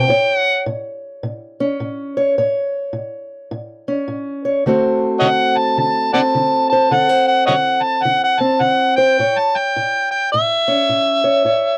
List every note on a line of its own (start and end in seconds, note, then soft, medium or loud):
0.00 0.10 C4 medium
0.00 0.36 G5 medium
0.08 0.62 A2 medium
0.08 2.16 C#5 medium
0.36 0.61 F#5 medium
0.66 1.19 A2 medium
1.23 1.76 A2 medium
1.60 2.35 C#4 medium
1.80 2.33 A2 medium
2.17 2.35 C#5 medium
2.38 2.90 A2 medium
2.38 4.43 C#5 medium
2.93 3.46 A2 medium
3.51 4.04 A2 medium
3.88 4.63 C#4 medium
4.08 4.60 A2 medium
4.45 4.63 C#5 medium
4.66 5.18 D3 medium
4.66 8.17 A3 medium
4.66 6.13 C4 medium
4.66 6.91 F#4 medium
4.66 6.71 C5 medium
5.20 5.74 D3 medium
5.20 5.27 C#5 medium
5.20 5.28 D#5 medium
5.20 5.59 F#5 medium
5.57 5.78 A5 medium
5.78 6.30 D3 medium
5.78 6.12 A5 loud
6.14 8.39 C4 medium
6.14 6.20 D5 medium
6.14 6.20 F#5 medium
6.14 6.66 A5 loud
6.35 6.87 D3 medium
6.69 6.90 C5 medium
6.69 6.95 A5 loud
6.91 7.44 D3 medium
6.91 7.09 A4 medium
6.91 7.27 F#5 medium
7.09 8.97 C5 medium
7.28 7.46 F#5 medium
7.47 8.01 D3 medium
7.47 7.55 C#5 medium
7.47 7.53 D#5 medium
7.47 7.84 F#5 medium
7.82 8.04 A5 medium
8.02 8.58 D3 medium
8.02 8.23 F#5 medium
8.24 8.42 F#5 medium
8.40 9.19 C4 medium
8.40 8.63 A5 medium
8.60 9.14 D3 medium
8.60 8.96 F#5 medium
8.96 9.16 C5 medium
8.96 9.39 G5 loud
9.19 9.71 A2 medium
9.19 11.23 C#5 medium
9.38 9.58 A5 medium
9.57 10.10 G5 medium
9.76 10.28 A2 medium
10.11 10.31 G5 medium
10.32 10.85 A2 medium
10.32 11.78 E5 medium
10.68 11.43 C#4 medium
10.89 11.41 A2 medium
11.24 11.43 C#5 medium
11.45 11.78 A2 medium
11.45 11.78 C#5 medium